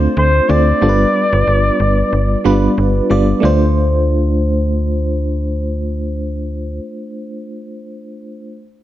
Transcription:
Already playing: A3 C4 D4 F4 C5
0.17 D2 C5
0.48 D2 A3 C4 D4 F4 C5 D5
0.81 G1 G3 B3 D4 F4 A4
0.89 B4
1.33 G1
1.47 G1
1.80 G1
2.13 G1
2.44 G1 G3 B3 D4 F4 B4
2.78 G1
3.10 G1 G3 B3 D4 F4 D5
3.40 D2 A3 D4 F4
3.45 C5

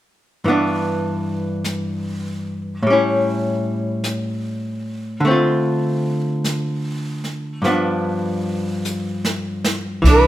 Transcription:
0.44 G2 E3 B3, brush sweep
0.49 D4
1.64 brush sweep, snare, hi-hat pedal
2.83 A2, brush sweep
2.87 G3 C#4
2.93 E4
4.04 brush sweep, snare, hi-hat pedal
5.20 D3, brush sweep
5.25 A3 C4
5.31 F4
6.44 brush sweep, snare, hi-hat pedal
7.24 snare
7.62 G2 F3 B3, brush sweep, snare
7.67 D4
8.85 hi-hat pedal
9.25 snare
9.64 snare
10.02 C2 E3, brush sweep, kick, snare, ride
10.07 D4
10.11 B4

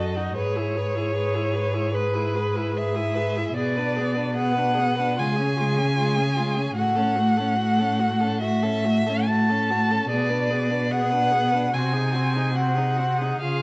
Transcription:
Already playing: F#2 F#4 A4 D#5
0.16 D#4 F#4
0.36 G#2 G#4 B4 C#5
0.56 E4 G#4
0.75 G#4 B4
0.95 E4 G#4
1.14 G#4 B4
1.34 E4 G#4
1.53 G#4 B4
1.74 E4 G#4
1.92 G#4 B4
2.14 E4 G#4
2.35 G#4 B4
2.56 E4 G#4
2.74 G#4 B4 E5
2.95 E4 G#4
3.14 G#4 B4
3.36 E4 G#4
3.56 B2 B3 G#4 D5
3.76 D4 B4
3.96 B3 G#4
4.15 D4 B4
4.34 G#4 F#5
4.38 B3
4.53 B4
4.58 D4
4.74 G#4
4.78 B3
4.96 D4 B4
5.17 C#3 G#3 F4 G#5
5.36 C#4 G#4
5.57 G#3 F4
5.78 C#4 G#4
5.96 G#3 F4
6.16 C#4 G#4
6.36 G#3 F4
6.55 C#4 G#4
6.76 A2 A3 F#4 F#5
6.96 C#4 A4
7.16 A3 F#4
7.37 C#4 A4
7.58 A3 F#4
7.79 C#4 A4
8.00 A3 F#4
8.21 C#4 A4
8.41 A3 F#4 E5
8.63 C#4 A4
8.85 A3 F#4
9.07 C#4 A4
9.27 A3 F#4 A5
9.49 C#4 A4
9.70 A3 F#4
9.91 C#4 A4
10.10 B2 B3 G#4 D5
10.30 D4 B4
10.50 B3 G#4
10.70 D4 B4
10.91 B3 G#4 F#5
11.11 D4 B4
11.31 B3 G#4
11.51 D4 B4
11.73 C3 C4 F#4 G#5
11.92 D#4 G#4
12.12 C4 F#4
12.33 D#4 G#4
12.53 C4 F#4 F#5
12.75 D#4 G#4
12.96 C4 F#4
13.18 D#4 G#4
13.41 C#3 F4 G#4 F5

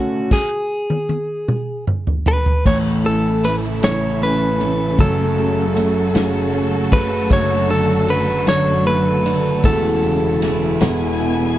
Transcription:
Already playing: B2 C#3 D3 A3 C#4 F#4 A4
0.31 G#4, kick, snare, crash
0.90 high tom
1.09 high tom
1.48 mid tom
1.87 mid tom
2.07 floor tom
2.26 B4, floor tom
2.46 floor tom
2.65 A1 A2 C#3 E3 A3 C#4 E4 A4 C#5, kick, crash
3.04 E3 A4, ride
3.42 E3 A3 C#4 A4 B4, ride
3.82 A2 E3 A3 C#4 A4 C#5, snare, ride
4.22 C#4 B4, ride
4.59 E3 A3 C#4 A4, ride
4.98 F#1 F#2 C#3 F#3 A3 C#4 F#4 A4, kick, ride
5.38 C#3, ride
5.75 F#3 A3 C#4 F#4, ride
6.14 F#2 C#3 F#3 A3 C#4 F#4, snare, ride
6.53 C#4, ride
6.91 C#3 F#3 A3 C#4 F#4 B4, kick, ride
7.29 F#1 F#2 D3 F#3 A3 D4 F#4 C#5, kick, ride
7.69 D3 A4, ride
8.07 F#3 A3 D4 F#4 B4, ride
8.46 D3 F#3 A3 D4 F#4 C#5, snare, ride
8.86 A3 B4, ride
9.24 D3 A3 D4 F#4, ride
9.63 E1 E2 C#3 E3 A3 C#4 E4 A4, kick, ride
10.03 C#3, ride
10.41 E3 A3 C#4 E4, snare, ride
10.80 E1 E2 B2 E3 B3 E4 G#5, snare, ride
11.20 B2, ride

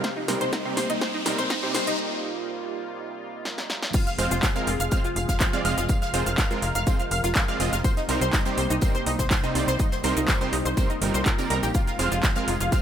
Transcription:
Already playing: C3 G4, riser
0.04 G3 A#3 D#4 C5, kick, snare, closed hi-hat
0.17 D#4
0.28 C2 C3 G3 C4 D#4 A#4 C5, snare, open hi-hat
0.41 C2 C5, closed hi-hat
0.53 D#4, kick, snare, closed hi-hat
0.65 C3 G3 C4 D#4 G4 C5
0.77 C2 C5, snare, open hi-hat
0.90 C2 D#4, closed hi-hat
1.01 C5, kick, snare, closed hi-hat
1.14 D#4
1.26 C2 C3 G3 C4 D#4 A#4 C5, snare, open hi-hat
1.38 C2 C5, closed hi-hat
1.50 D#4, kick, snare, closed hi-hat
1.63 C3 G3 C4 D#4 G4 C5
1.74 C2 C5, snare, open hi-hat
1.87 C2 D#4, closed hi-hat
1.99 F4
3.45 snare
3.58 snare
3.70 snare
3.82 snare
3.93 C3 F3 G#3 F4 G#4, kick, closed hi-hat, crash, tambourine, shaker
4.07 F5, snare, closed hi-hat, shaker
4.18 F1 G#3 C4 F4 C5 F5, open hi-hat, tambourine
4.31 F1 F4, closed hi-hat, shaker
4.43 F5, kick, snare, clap, closed hi-hat, tambourine, shaker
4.56 G#3 C4 F4 A#4 F5, closed hi-hat, shaker
4.67 F1 F4, open hi-hat, tambourine
4.80 F1 F5, closed hi-hat, shaker
4.91 G#3 C4 F4 C5 F5, kick, closed hi-hat, tambourine, shaker
5.04 F4, closed hi-hat, shaker
5.16 F1 F5, open hi-hat, tambourine
5.28 F1 F5, kick, snare, closed hi-hat, shaker
5.40 F4, kick, snare, clap, closed hi-hat, tambourine, shaker
5.53 G#3 C4 F4 D5 F5, closed hi-hat, shaker
5.65 F1 G#3 C4 F4 D#5 F5, open hi-hat, tambourine
5.77 F1 F4, snare, closed hi-hat, shaker
5.89 A#4 F5, kick, closed hi-hat, tambourine, shaker
6.02 F5, snare, closed hi-hat, shaker
6.14 F1 G#3 C4 F4 C5, open hi-hat, tambourine
6.26 F1 F5, closed hi-hat, shaker
6.38 F5, kick, snare, clap, closed hi-hat, tambourine, shaker
6.51 G#3 C4 F4 A#4, closed hi-hat, shaker
6.62 F1 F5, open hi-hat, tambourine
6.75 F1 F5, closed hi-hat, shaker
6.87 G#3 C4 F4 C5, kick, closed hi-hat, tambourine, shaker
7.00 F5, closed hi-hat, shaker
7.11 F1 F5, open hi-hat, tambourine
7.24 F1 F4, snare, closed hi-hat, shaker
7.35 F5, kick, snare, clap, closed hi-hat, tambourine, shaker
7.48 G#3 C4 F4 D5 F5, closed hi-hat, shaker
7.60 F1 G#3 C4 F4 D#5, snare, open hi-hat, tambourine
7.73 F1 F5, snare, closed hi-hat, shaker
7.84 G3 A#3 D#4 G4 C5, kick, closed hi-hat, tambourine, shaker
7.97 D#4, snare, closed hi-hat, shaker
8.09 C2 C3 G3 C4 D#4 A#4 C5, open hi-hat, tambourine
8.21 C2 C5, closed hi-hat, shaker
8.33 D#4, kick, snare, clap, closed hi-hat, tambourine, shaker
8.45 C3 G3 C4 D#4 G4 C5, closed hi-hat, shaker
8.57 C2 C5, open hi-hat, tambourine
8.70 C2 D#4, closed hi-hat, shaker
8.81 C3 G3 C4 D#4 A#4 C5, kick, closed hi-hat, tambourine, shaker
8.95 C5, closed hi-hat, shaker
9.06 C2 D#4, open hi-hat, tambourine
9.18 C2 C5, kick, snare, closed hi-hat, shaker
9.30 C5, kick, snare, clap, closed hi-hat, tambourine, shaker
9.43 C3 G3 C4 D#4 C5, closed hi-hat, shaker
9.55 C2 C3 G3 C4 D#4 C5 D5, open hi-hat, tambourine
9.68 C2 C5, snare, closed hi-hat, shaker
9.79 D#4 F4, kick, closed hi-hat, tambourine, shaker
9.91 C5, snare, closed hi-hat, shaker
10.04 C2 C3 G3 C4 D#4 A#4 C5, open hi-hat, tambourine
10.17 C2 D#4, closed hi-hat, shaker
10.28 C5, kick, snare, clap, closed hi-hat, tambourine, shaker
10.41 C3 G3 C4 D#4 G4 C5, closed hi-hat, shaker
10.53 C2 D#4, open hi-hat, tambourine
10.65 C2 C5, closed hi-hat, shaker
10.77 C3 G3 C4 D#4 A#4 C5, kick, closed hi-hat, tambourine, shaker
10.90 D#4, closed hi-hat, shaker
11.01 G1 C3 G3 C4 D#4 A#4, open hi-hat, tambourine
11.14 C2 C5, snare, closed hi-hat, shaker
11.26 A#4, kick, clap, closed hi-hat, tambourine, shaker
11.38 C3 G3 C4 D#4 A#4 D5, closed hi-hat, tambourine, shaker
11.50 C2 G3 C4 D#4 A#4, snare, open hi-hat
11.63 A#1 G4, closed hi-hat, tambourine, shaker
11.74 F3 G#3 F4 G#4, kick, closed hi-hat, tambourine, shaker
11.87 F4, snare, closed hi-hat, shaker
11.99 F1 G#3 C4 F4 C5 F5, open hi-hat, tambourine
12.12 F1 F4, closed hi-hat, shaker
12.23 F4, kick, snare, clap, closed hi-hat, tambourine, shaker
12.35 G#3 C4 F4 A#4 F5, closed hi-hat, shaker
12.48 F1 F4, open hi-hat, tambourine
12.60 F1 F4, closed hi-hat, shaker
12.72 G#3 C4 F4 C5 F5, kick, closed hi-hat, tambourine, shaker

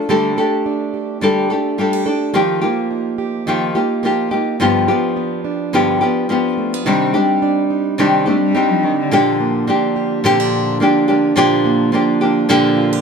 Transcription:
Already playing: F3 D4
0.09 D3 G3 A3 D4 G4 A4
0.37 A3 D4 G4 A4
0.66 D4
0.94 G4
1.21 D3 G3 D4 G4 A4
1.49 A3 D4 G4 A4
1.78 G3 D4 F4 G4 A4
1.93 G4
2.06 D4 G4 A4
2.33 D#3 F3 A#3 F4 G4
2.61 A#3 F4 G4
2.91 D#4
3.18 G4
3.47 D#3 F3 A#3 D#4 F4 G4
3.75 A#3 F4 G4
4.03 F3 A#3 F4 G4
4.31 A#3 D#4 F4 G4
4.59 G2 D3 F3 B3 D4 F4 G4
4.88 F3 B3 F4 G4
5.17 B3
5.44 D4
5.73 G2 D3 F3 B3 F4 G4
6.01 F3 B3 F4 G4
6.29 F3 B3 D4 F4 G4
6.58 A3
6.74 B3
6.86 C3 D#3 G3 C4 D4 D#4 G4
7.14 G3 C4 D4 G4
7.42 D4
7.70 D#4
7.98 C3 D#3 G3 C4 D4 G4
8.26 G3 A3 C4 D4 G4
8.42 G3
8.55 G3 C4 D4 D#4 G4
8.70 F3
8.83 D#3 D4
9.00 D3
9.11 A#2 D3 F3 A#3 D4 G4
9.40 A#3
9.67 F3 A#3 D4 G4
9.96 G4
10.24 A#2 D3 F3 A#3 C4 D4 G4
10.40 D4
10.53 G4
10.80 F3 A#3 D4 G4
11.08 F3 A#3 D4 G4
11.36 A#2 D3 F3 A#3 D4 G4
11.65 A#3
11.92 F3 A#3 D4 G4
12.21 F3 A#3 D4 G4
12.49 A#2 D3 F3 A#3 D4 G4
12.77 F4
12.93 G4

